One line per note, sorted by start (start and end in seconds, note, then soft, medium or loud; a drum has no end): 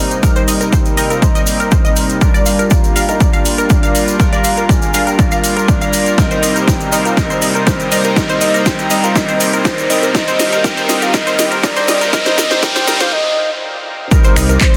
0.00 0.19 C2 medium
0.00 2.17 C3 medium
0.00 0.20 G3 medium
0.00 6.14 G3 medium
0.00 2.17 A#3 medium
0.00 0.20 C4 medium
0.00 0.20 D#4 medium
0.00 2.17 D#4 medium
0.00 0.20 A#4 loud
0.00 0.24 C5 loud
0.00 0.21 D#5 medium
0.00 riser medium
0.11 closed hi-hat soft
0.11 cabasa soft
0.23 0.95 G3 loud
0.23 2.19 C4 medium
0.23 0.95 C4 medium
0.23 0.95 D#4 medium
0.23 0.27 A#4 medium
0.23 0.95 A#4 loud
0.23 0.72 D#5 loud
0.23 kick loud
0.23 closed hi-hat medium
0.23 cabasa medium
0.36 0.42 C5 loud
0.36 closed hi-hat soft
0.36 cabasa soft
0.48 0.68 C2 loud
0.48 0.54 D#5 medium
0.48 open hi-hat loud
0.48 cabasa medium
0.61 0.67 A#4 medium
0.61 closed hi-hat soft
0.61 cabasa soft
0.72 0.77 C5 medium
0.72 1.12 G5 loud
0.72 kick loud
0.72 closed hi-hat medium
0.72 cabasa medium
0.86 closed hi-hat soft
0.86 cabasa soft
0.97 1.18 C2 medium
0.97 2.19 G3 medium
0.97 2.19 C4 medium
0.97 2.19 D#4 medium
0.97 2.19 A#4 loud
0.97 1.07 D#5 loud
0.97 open hi-hat medium
0.97 cabasa medium
1.10 1.19 A#4 medium
1.10 1.21 F5 loud
1.10 closed hi-hat soft
1.10 cabasa soft
1.22 1.26 C5 medium
1.22 1.57 D#5 loud
1.22 kick loud
1.22 closed hi-hat medium
1.22 cabasa medium
1.35 1.41 D#5 loud
1.35 closed hi-hat soft
1.35 cabasa soft
1.47 1.68 C2 medium
1.47 open hi-hat loud
1.47 cabasa loud
1.60 1.66 A#4 medium
1.60 closed hi-hat soft
1.60 cabasa soft
1.71 2.23 A#4 loud
1.71 1.76 C5 medium
1.71 kick loud
1.71 closed hi-hat medium
1.71 cabasa medium
1.85 1.91 D#5 loud
1.85 closed hi-hat soft
1.85 cabasa soft
1.96 2.17 C2 medium
1.96 open hi-hat medium
1.96 cabasa loud
2.09 closed hi-hat soft
2.09 cabasa soft
2.21 2.93 G3 loud
2.21 13.08 A#3 medium
2.21 2.93 D4 medium
2.21 6.14 F4 medium
2.21 2.93 F4 medium
2.21 2.25 A#4 medium
2.21 2.93 A#4 loud
2.21 2.72 D5 loud
2.21 kick loud
2.21 closed hi-hat medium
2.21 cabasa medium
2.34 2.40 D5 loud
2.34 closed hi-hat soft
2.34 cabasa soft
2.46 2.67 A#1 loud
2.46 2.53 F5 medium
2.46 open hi-hat loud
2.46 cabasa loud
2.59 2.65 A#4 medium
2.59 closed hi-hat soft
2.59 cabasa soft
2.70 2.75 D5 medium
2.70 3.10 F5 loud
2.70 kick loud
2.70 closed hi-hat medium
2.70 cabasa medium
2.84 closed hi-hat soft
2.84 cabasa soft
2.96 3.16 A#1 medium
2.96 4.17 G3 medium
2.96 4.17 D4 medium
2.96 4.17 F4 medium
2.96 4.17 A#4 loud
2.96 3.06 F5 loud
2.96 open hi-hat medium
2.96 cabasa medium
3.08 3.18 A#4 medium
3.08 3.22 D#5 loud
3.08 closed hi-hat soft
3.08 cabasa soft
3.20 3.58 D5 loud
3.20 3.25 D5 medium
3.20 kick loud
3.20 closed hi-hat medium
3.20 cabasa soft
3.33 3.40 F5 loud
3.33 closed hi-hat soft
3.33 cabasa soft
3.45 3.66 A#1 medium
3.45 open hi-hat loud
3.45 cabasa loud
3.58 3.64 A#4 medium
3.58 closed hi-hat soft
3.58 cabasa soft
3.70 4.16 D5 loud
3.70 3.74 D5 medium
3.70 kick loud
3.70 closed hi-hat medium
3.70 cabasa medium
3.83 3.89 F5 loud
3.83 closed hi-hat soft
3.83 cabasa soft
3.95 4.16 A#1 medium
3.95 open hi-hat loud
3.95 cabasa medium
4.08 closed hi-hat soft
4.08 cabasa soft
4.19 4.91 G3 loud
4.19 4.91 D4 medium
4.19 4.91 F4 medium
4.19 4.24 A#4 medium
4.19 4.91 A#4 loud
4.19 4.70 F5 loud
4.19 kick loud
4.19 closed hi-hat medium
4.19 cabasa medium
4.33 4.39 D5 loud
4.33 closed hi-hat soft
4.33 cabasa soft
4.44 4.65 A#1 loud
4.44 4.51 F5 medium
4.44 open hi-hat loud
4.44 cabasa loud
4.57 4.63 A#4 medium
4.57 closed hi-hat soft
4.57 cabasa soft
4.69 4.73 D5 medium
4.69 5.06 G#5 loud
4.69 kick loud
4.69 closed hi-hat medium
4.69 cabasa medium
4.82 closed hi-hat soft
4.82 cabasa soft
4.94 5.15 A#1 medium
4.94 6.15 G3 medium
4.94 6.15 D4 medium
4.94 6.15 F4 medium
4.94 6.15 A#4 loud
4.94 5.04 F5 loud
4.94 open hi-hat medium
4.94 cabasa loud
5.07 5.16 A#4 medium
5.07 5.18 G5 loud
5.07 closed hi-hat soft
5.07 cabasa soft
5.18 5.23 D5 medium
5.18 5.54 F5 loud
5.18 kick loud
5.18 closed hi-hat medium
5.18 cabasa soft
5.31 5.38 F5 loud
5.31 closed hi-hat soft
5.31 cabasa soft
5.44 5.64 A#1 loud
5.44 open hi-hat loud
5.44 cabasa medium
5.57 5.63 A#4 medium
5.57 closed hi-hat soft
5.57 cabasa soft
5.68 6.19 D5 loud
5.68 5.72 D5 medium
5.68 kick loud
5.68 closed hi-hat medium
5.68 cabasa soft
5.81 5.87 F5 loud
5.81 closed hi-hat soft
5.81 cabasa soft
5.93 6.14 A#1 medium
5.93 open hi-hat loud
5.93 cabasa medium
6.06 closed hi-hat soft
6.06 cabasa soft
6.18 10.11 C3 medium
6.18 6.90 G3 medium
6.18 10.11 G3 medium
6.18 6.90 C4 medium
6.18 6.90 D#4 medium
6.18 10.11 D#4 medium
6.18 6.22 A#4 medium
6.18 6.90 A#4 loud
6.18 13.08 C5 medium
6.18 6.67 D#5 loud
6.18 kick loud
6.18 snare soft
6.18 closed hi-hat medium
6.18 cabasa medium
6.31 6.37 C5 loud
6.31 closed hi-hat soft
6.31 cabasa soft
6.43 6.64 C2 loud
6.43 6.49 D#5 medium
6.43 open hi-hat loud
6.43 cabasa medium
6.56 6.62 A#4 medium
6.56 closed hi-hat soft
6.56 cabasa soft
6.67 6.72 C5 medium
6.67 7.07 G5 loud
6.67 kick loud
6.67 snare medium
6.67 closed hi-hat medium
6.67 cabasa medium
6.80 closed hi-hat soft
6.80 cabasa soft
6.92 7.13 C2 medium
6.92 7.15 G3 medium
6.92 7.15 C4 medium
6.92 7.15 D#4 medium
6.92 7.15 A#4 medium
6.92 7.02 D#5 medium
6.92 open hi-hat medium
6.92 cabasa loud
7.05 7.14 A#4 medium
7.05 7.19 F5 loud
7.05 closed hi-hat soft
7.05 cabasa soft
7.17 7.89 G3 medium
7.17 7.89 C4 medium
7.17 7.89 D#4 medium
7.17 7.21 A#4 medium
7.17 7.89 A#4 loud
7.17 7.55 D#5 loud
7.17 kick loud
7.17 snare medium
7.17 closed hi-hat medium
7.17 cabasa soft
7.30 7.36 C5 medium
7.30 closed hi-hat soft
7.30 cabasa soft
7.42 7.63 C2 medium
7.42 7.49 D#5 medium
7.42 open hi-hat loud
7.42 cabasa medium
7.55 7.61 A#4 medium
7.55 closed hi-hat soft
7.55 cabasa soft
7.67 8.17 C5 loud
7.67 7.71 C5 medium
7.67 kick loud
7.67 snare medium
7.67 closed hi-hat medium
7.67 cabasa medium
7.80 closed hi-hat soft
7.80 cabasa soft
7.92 8.12 C2 medium
7.92 8.15 G3 medium
7.92 8.15 C4 medium
7.92 8.15 D#4 medium
7.92 8.15 A#4 medium
7.92 8.02 D#5 loud
7.92 open hi-hat medium
7.92 cabasa medium
8.04 8.14 A#4 medium
8.04 closed hi-hat soft
8.04 cabasa soft
8.16 8.88 G3 medium
8.16 8.88 C4 medium
8.16 8.88 D#4 medium
8.16 8.20 A#4 medium
8.16 8.88 A#4 loud
8.16 8.65 D#5 loud
8.16 kick loud
8.16 snare medium
8.16 closed hi-hat medium
8.16 cabasa soft
8.29 8.35 C5 loud
8.29 closed hi-hat soft
8.29 cabasa soft
8.41 8.62 C2 loud
8.41 8.48 D#5 medium
8.41 open hi-hat loud
8.41 cabasa medium
8.54 8.60 A#4 medium
8.54 closed hi-hat soft
8.54 cabasa soft
8.66 8.70 C5 medium
8.66 9.05 G5 loud
8.66 kick loud
8.66 snare medium
8.66 closed hi-hat medium
8.66 cabasa soft
8.79 closed hi-hat soft
8.79 cabasa soft
8.90 9.11 C2 medium
8.90 9.14 G3 medium
8.90 9.14 C4 medium
8.90 9.14 D#4 medium
8.90 9.14 A#4 loud
8.90 9.01 D#5 loud
8.90 open hi-hat medium
8.90 cabasa medium
9.04 9.13 A#4 medium
9.04 9.17 F5 loud
9.04 closed hi-hat soft
9.04 cabasa soft
9.15 9.87 G3 medium
9.15 9.87 C4 medium
9.15 9.87 D#4 medium
9.15 9.20 A#4 medium
9.15 9.87 A#4 loud
9.15 9.53 D#5 loud
9.15 kick loud
9.15 snare medium
9.15 closed hi-hat medium
9.15 cabasa soft
9.29 9.35 C5 loud
9.29 closed hi-hat soft
9.29 cabasa soft
9.40 9.61 C2 medium
9.40 9.47 D#5 medium
9.40 open hi-hat loud
9.40 cabasa medium
9.53 9.59 A#4 medium
9.53 closed hi-hat soft
9.53 cabasa soft
9.65 10.16 C5 loud
9.65 9.69 C5 medium
9.65 kick loud
9.65 snare medium
9.65 closed hi-hat medium
9.65 cabasa soft
9.78 closed hi-hat soft
9.78 cabasa soft
9.90 10.11 C2 medium
9.90 10.13 G3 medium
9.90 10.13 C4 medium
9.90 10.13 D#4 medium
9.90 10.13 A#4 loud
9.90 10.00 D#5 loud
9.90 open hi-hat medium
9.90 cabasa medium
10.03 10.12 A#4 medium
10.03 closed hi-hat soft
10.03 cabasa soft
10.15 13.09 D#3 medium
10.15 10.63 G3 medium
10.15 10.63 C4 medium
10.15 10.63 D#4 medium
10.15 13.09 F4 medium
10.15 13.09 G4 medium
10.15 10.19 A#4 medium
10.15 10.63 A#4 loud
10.15 10.66 D#5 loud
10.15 kick loud
10.15 snare medium
10.15 closed hi-hat medium
10.15 cabasa medium
10.28 10.34 C5 loud
10.28 closed hi-hat soft
10.28 cabasa soft
10.39 10.60 D#2 loud
10.39 10.46 D#5 medium
10.39 snare medium
10.39 open hi-hat loud
10.39 cabasa medium
10.53 10.59 A#4 medium
10.53 closed hi-hat soft
10.53 cabasa soft
10.64 11.12 G3 loud
10.64 11.12 C4 medium
10.64 11.12 D#4 medium
10.64 10.68 A#4 medium
10.64 11.12 A#4 loud
10.64 11.03 G5 loud
10.64 kick loud
10.64 snare medium
10.64 closed hi-hat medium
10.64 cabasa soft
10.77 10.83 C5 loud
10.77 closed hi-hat soft
10.77 cabasa soft
10.89 11.10 D#2 medium
10.89 10.96 D#5 medium
10.89 snare medium
10.89 open hi-hat medium
10.89 cabasa medium
11.02 11.08 A#4 medium
11.02 11.13 F5 medium
11.02 closed hi-hat soft
11.02 cabasa soft
11.14 11.62 G3 medium
11.14 11.62 C4 medium
11.14 11.62 D#4 medium
11.14 11.18 A#4 medium
11.14 11.62 A#4 loud
11.14 11.49 D#5 loud
11.14 kick loud
11.14 snare medium
11.14 closed hi-hat medium
11.14 cabasa soft
11.27 11.33 C5 loud
11.27 closed hi-hat soft
11.27 cabasa soft
11.39 11.59 D#2 medium
11.39 11.45 D#5 medium
11.39 snare medium
11.39 open hi-hat loud
11.39 cabasa medium
11.52 11.58 A#4 medium
11.52 closed hi-hat soft
11.52 cabasa soft
11.63 12.11 G3 loud
11.63 12.11 C4 medium
11.63 12.11 D#4 medium
11.63 11.67 A#4 medium
11.63 12.11 A#4 loud
11.63 12.09 D5 loud
11.63 kick loud
11.63 snare medium
11.63 closed hi-hat medium
11.63 cabasa medium
11.76 11.82 C5 loud
11.76 closed hi-hat soft
11.76 cabasa soft
11.88 12.09 D#2 medium
11.88 11.95 D#5 medium
11.88 snare medium
11.88 open hi-hat medium
11.88 cabasa medium
12.01 12.07 A#4 medium
12.01 closed hi-hat soft
12.01 cabasa soft
12.13 12.36 G3 loud
12.13 12.36 C4 medium
12.13 12.36 D#4 medium
12.13 12.17 A#4 medium
12.13 12.36 A#4 loud
12.13 12.64 D#5 loud
12.13 kick loud
12.13 snare medium
12.13 closed hi-hat medium
12.13 cabasa soft
12.26 12.32 C5 loud
12.26 snare medium
12.26 closed hi-hat soft
12.26 cabasa soft
12.38 12.58 D#2 loud
12.38 12.61 G3 loud
12.38 12.61 C4 loud
12.38 12.61 D#4 medium
12.38 12.42 A#4 medium
12.38 12.61 A#4 loud
12.38 kick medium
12.38 snare loud
12.38 open hi-hat loud
12.38 cabasa medium
12.51 12.57 C5 loud
12.51 snare medium
12.51 closed hi-hat soft
12.51 cabasa soft
12.62 12.86 G3 loud
12.62 12.86 C4 medium
12.62 12.86 D#4 loud
12.62 12.67 A#4 medium
12.62 12.86 A#4 loud
12.62 13.02 G5 medium
12.62 kick loud
12.62 snare loud
12.62 closed hi-hat medium
12.62 cabasa medium
12.76 12.82 C5 loud
12.76 snare medium
12.76 closed hi-hat soft
12.76 cabasa soft
12.87 13.08 D#2 medium
12.87 13.10 G3 loud
12.87 13.10 C4 medium
12.87 13.10 D#4 medium
12.87 12.91 A#4 medium
12.87 13.10 A#4 loud
12.87 snare loud
12.87 open hi-hat medium
12.87 cabasa medium
13.00 13.06 C5 loud
13.00 13.14 F5 medium
13.00 snare medium
13.00 closed hi-hat soft
13.00 cabasa soft
13.12 13.50 D#5 loud
14.11 14.77 C3 medium
14.11 14.77 G3 medium
14.11 14.77 G3 loud
14.11 14.77 A#3 medium
14.11 14.77 C4 medium
14.11 14.77 D#4 medium
14.11 14.15 A#4 medium
14.11 14.77 A#4 loud
14.11 14.77 D5 medium
14.11 kick loud
14.11 closed hi-hat medium
14.11 cabasa medium
14.24 14.30 C5 loud
14.24 closed hi-hat soft
14.24 cabasa soft
14.36 14.57 C2 loud
14.36 14.43 D#5 medium
14.36 finger snap medium
14.36 open hi-hat loud
14.36 cabasa medium
14.49 14.55 A#4 medium
14.49 closed hi-hat soft
14.49 cabasa soft
14.61 14.77 C5 loud
14.61 14.65 C5 medium
14.61 14.77 C5 loud
14.61 kick loud
14.61 clap loud
14.61 closed hi-hat medium
14.61 cabasa medium